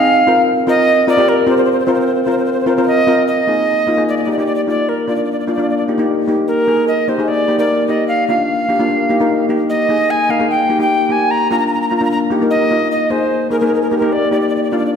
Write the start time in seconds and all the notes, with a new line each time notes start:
Already playing: F5
0.27 C4 F4 A#4
0.67 C4 F4 A#4 D#5
1.07 C4 F4 A#4 D5
1.17 C4 F4 G4
1.29 A#4
1.46 C4 F4 A#4 C5
1.57 C5
1.64 C5
1.72 C5
1.80 C5
1.86 C4 F4 A#4 C5
1.94 C5
2.01 C5
2.07 C5
2.15 C5
2.24 C4 F4 C5
2.28 A#4 C5
2.38 C5
2.45 C5
2.53 C5
2.60 C5
2.66 C4 F4 A#4 C5
2.76 C4 F4 A#4 C5
2.83 C5
2.87 D#5
3.07 C4 F4 A#4
3.28 D#5
3.47 A#3 D#4 G#4
3.87 A#3 D#4 F4
3.97 A#3 D#4 G#4
4.08 D5
4.17 D5
4.24 A#3 D#4 D5
4.28 G4 D5
4.38 A#3 D#4 G4 D5
4.46 D5
4.55 D5
4.67 A#3 D#4 F4 D5
4.89 A#4
5.07 A#3 D4 F4 D5
5.16 D5
5.24 D5
5.32 D5
5.40 D5
5.47 A#3 D4 F4 D5
5.54 A#3 D5
5.59 D4 F4 D5
5.70 D5
5.77 D5
5.88 A#3 D#4 G4
5.98 A#3 D#4 G4
6.28 A#3 D#4 G4
6.48 A#4
6.67 A#3 D#4 G#4
6.88 D#5
7.08 A#3 D#4 G4 C5
7.18 A#3 D#4 G#4
7.28 D5
7.48 A#3 D#4 G4
7.58 A#3 D#4 A#4 D5
7.88 A#3 D#4 G4 D#5
8.08 F5
8.28 A#3 D4 F4 F5
8.69 A#3 D4 G4
8.79 A#3 D4 F4
9.09 A#3 D#4 G4
9.20 A#3 D#4 A#4
9.49 A#3 D#4 G4
9.69 D#5
9.89 A#3 D#4 G#4
10.10 G#5
10.29 A#3 D#4 A#4 F5
10.39 A#3 D#4 G#4
10.50 G5
10.69 A#3 D#4 G4
10.79 A#3 D#4 G4 G5
11.09 A#3 D#4 G4 G#5
11.31 A#5
11.51 A#3 D4 F4 A#5
11.59 A#5
11.67 A#5
11.74 A#5
11.82 A#5
11.89 A#3 D4 F4 A#5
11.96 A#5
12.01 A#3 D4 F4 A#5
12.11 A#5
12.31 A#3 D#4 G4
12.42 A#3 D#4 A#4
12.50 D#5
12.71 A#3 D#4 F4
12.92 D#5
13.10 A#3 D#4 G#4 C5
13.50 A#3 D#4 G#4 A#4
13.60 A#3 D#4 G#4 A#4
13.67 A#4
13.75 A#4
13.82 A#4
13.90 A#3 D#4 G4 A#4
13.98 A#3 D#4 A#4
14.02 G4
14.12 D5
14.31 A#3 D#4 G4 D5
14.41 D5
14.49 D5
14.56 D5
14.63 D5
14.71 A#3 D4 F4 D5
14.78 D5
14.86 D5